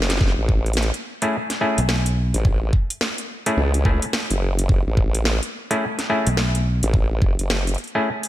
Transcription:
Already playing: F#1
0.02 snare
0.10 snare, closed hi-hat
0.17 F#1, kick, snare
0.21 snare
0.26 snare
0.38 A1
0.49 kick
0.66 closed hi-hat
0.73 snare, closed hi-hat
0.82 closed hi-hat
0.94 closed hi-hat
1.22 A3 C#4 E4 G#4, cross-stick, closed hi-hat
1.50 snare, closed hi-hat
1.61 A3 C#4 E4 G#4
1.78 B1, closed hi-hat
1.89 snare
2.06 closed hi-hat
2.34 A1, closed hi-hat
2.45 kick
2.73 kick
2.90 closed hi-hat
3.01 snare
3.18 closed hi-hat
3.46 A3 C#4 E4 G#4, cross-stick, closed hi-hat
3.57 C#2
3.74 closed hi-hat
3.85 A3 C#4 E4 G#4, kick
4.02 closed hi-hat
4.13 snare
4.31 F#1, closed hi-hat
4.59 closed hi-hat
4.69 F#1, kick
4.87 A1
4.97 kick
5.15 closed hi-hat
5.25 snare
5.43 closed hi-hat
5.71 A3 C#4 E4 G#4, cross-stick, closed hi-hat
5.73 cross-stick
5.76 cross-stick
5.79 cross-stick
5.82 cross-stick
5.86 cross-stick
5.90 cross-stick
5.94 cross-stick
5.99 snare, closed hi-hat
6.10 A3 C#4 E4 G#4
6.27 B1, closed hi-hat
6.37 snare
6.55 closed hi-hat
6.83 A1, closed hi-hat
6.94 kick
7.22 F#1, kick
7.39 F#1, closed hi-hat
7.50 snare
7.67 closed hi-hat
7.75 closed hi-hat
7.78 closed hi-hat
7.84 closed hi-hat
7.88 closed hi-hat
7.95 A3 C#4 E4 G#4, cross-stick
8.23 closed hi-hat
8.25 closed hi-hat

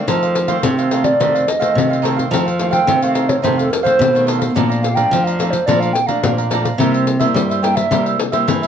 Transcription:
Already playing: D#3 A3 C4
0.07 F2 F3 D#4 A4 C5 F5, pandeiro
0.23 A4 C5 F5, pandeiro
0.35 muted cavaquinho stroke, pandeiro
0.48 D#3 A3 C4 A4 C5 F5, pandeiro
0.63 C3, pandeiro
0.78 A4 C5 F5, pandeiro
0.91 D#3 A3 C4 D#4 A4 C5 F5, pandeiro
1.04 D5, pandeiro
1.20 F2 C3 D#3 A3 C4 D#4 A4 C5 F5, pandeiro
1.34 A4 C5 F5, pandeiro
1.47 D#5, muted cavaquinho stroke, pandeiro
1.60 D#3 A3 C4 A4 C5 F5, pandeiro
1.75 C3, pandeiro
1.90 A4 C5 F5, pandeiro
2.02 D#3 A3 C4 D#4 A4 C5 F5, pandeiro
2.16 A4 C5 F5, pandeiro
2.31 F2 D#3 F3 A3 C4 D#4 A4 C5 F5, pandeiro
2.46 A4 C5 F5, pandeiro
2.58 D#3 A3 C4 F5, muted cavaquinho stroke, pandeiro
2.71 A4 C5 F5 G5, pandeiro
2.87 C3, pandeiro
3.01 D#3 A3 C4 A4 C5 F5, pandeiro
3.14 D#4 A4 C5 F5, pandeiro
3.29 C#5, pandeiro
3.42 F2 C3 D#3 A3 C4 D#4 A4 C5 F5, pandeiro
3.57 A4 C5 F5, pandeiro
3.70 A#4, muted cavaquinho stroke, pandeiro
3.83 D#3 A3 C4 A4 C5 F5, pandeiro
3.99 B2, pandeiro
4.13 D#3 A3 A4 C5 F5, pandeiro
4.27 D#4 A4 C5 F5, pandeiro
4.39 A4 C5 F5, pandeiro
4.55 A#2 F3 A3 D4 A4 D5 F5 A#5, pandeiro
4.69 D5 F5 A#5, pandeiro
4.81 F5, muted cavaquinho stroke, pandeiro
4.94 F3 A3 D4 D5 F5 G5 A#5, pandeiro
5.11 F2 F3, pandeiro
5.24 F5 A#5, pandeiro
5.28 D5
5.39 F3 A3 D4 A4 D5 F5 A#5, pandeiro
5.50 C5, pandeiro
5.66 A#2 F3 A3 D4 A4 D5 F5 A#5, pandeiro
5.80 D5 F5 A#5, pandeiro
5.93 G5, muted cavaquinho stroke, pandeiro
6.06 F3 A3 D4 D5 F5 A#5, pandeiro
6.23 F2 A#2, pandeiro
6.37 D5 F5 A#5, pandeiro
6.50 F3 A3 D4 A4 D5 F5 A#5, pandeiro
6.63 D5 F5 A#5, pandeiro
6.78 C3 G3 A#3 E4 A#4 C5 E5, pandeiro
6.93 A#4 C5 E5, pandeiro
7.07 muted cavaquinho stroke, pandeiro
7.19 G3 A#3 E4 A#4 C5 E5, pandeiro
7.34 G2 G3, pandeiro
7.49 A#4 C5 E5, pandeiro
7.62 G3 A#3 E4 A#4 C5 E5 G5, pandeiro
7.75 E5, pandeiro
7.91 C3 G3 A#3 E4 A#4 C5 E5, pandeiro
8.06 A#4 C5 E5, pandeiro
8.19 muted cavaquinho stroke, pandeiro
8.32 G3 A#3 E4 A#4 C5 E5, pandeiro
8.48 G2 E3, pandeiro
8.62 A#4 C5 E5, pandeiro

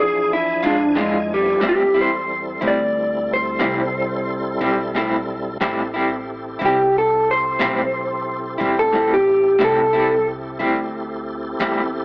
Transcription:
Already playing: E2 F3 D4 E4 G#5
0.00 G#4
0.33 E4
0.63 F2 G#3 D4 F4
0.95 E3 G#3 D4 F4
1.00 G#3
1.33 G3 A3 B3
1.38 C4 D4
1.43 E4
1.47 F4 G4
1.52 A4 B4
1.58 E2 A2 G3 C5 D5
1.62 G3 C4 E4 A4
1.69 G4
1.94 G3 C4 E4
2.01 C5
2.61 D2 G3 C4 E4
2.67 D5
3.33 C5
3.59 C2 A2 G3 C4 E4
4.61 B1 G3 C4 E4
4.95 A2 G3 C4 E4
5.61 A1 A2 G3 C4 E4 G4 A4
5.94 G3 C4 E4
6.59 C2 G3 C4 E4
6.66 G4
6.98 A4
7.31 C5
7.59 B1 A2 G3 C4 E4
8.58 A1 G3 C4 E4
8.79 A4
8.93 A2 G3 C4 E4
9.14 G4
9.59 C2 A2 G3 C4 E4 G4 A4
9.64 A4
9.93 G3 C4 E4
10.59 D2 G3 C4 E4
11.59 E2 A2 G3 C4 E4

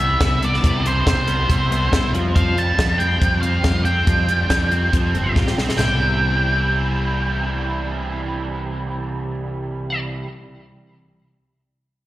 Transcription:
Already playing: C2 E3 G3 E5
0.00 G3 B3
0.20 C2 G3 B3 E4, kick, snare, closed hi-hat
0.42 G3 B3 D5, closed hi-hat
0.54 snare
0.62 C2 C3 G3 B3 E4, kick, closed hi-hat
0.85 E3 G3 B3 C5, closed hi-hat
1.06 G3 B3 C5, kick, snare, closed hi-hat
1.27 G3 B3, closed hi-hat
1.49 C2 E3 G3 B3, kick, closed hi-hat
1.70 G3 B3, closed hi-hat
1.91 G3 B3 E4, kick, snare, closed hi-hat
2.13 F2 F3 G3 C4 F4, closed hi-hat
2.34 F3 G3 C4 F4 F5, kick, closed hi-hat
2.56 G3 C4 A5, closed hi-hat
2.78 F2 G3 C4, kick, snare, closed hi-hat
2.99 G3 C4 G5, closed hi-hat
3.20 F2 F3 G3 C4, kick, closed hi-hat
3.42 G3 C4 F5, closed hi-hat
3.63 F2 G3 C4 F4 G4, kick, snare, closed hi-hat
3.85 G3 C4 G5, closed hi-hat
4.07 F2 F3 G3 C4 F4, kick, closed hi-hat
4.28 G3, closed hi-hat
4.50 F2 G3 C4, kick, snare, closed hi-hat
4.71 G3 C4, closed hi-hat
4.92 F2 F3 G3 C4, kick, closed hi-hat
5.14 G1 G3 C4, closed hi-hat
5.34 A1 G3 C4 F4 G4, kick, snare
5.47 snare
5.57 B1 G3 C4, snare
5.69 snare
5.78 C2 C3 E3 G3 B3 E4 G5, snare, floor tom, crash

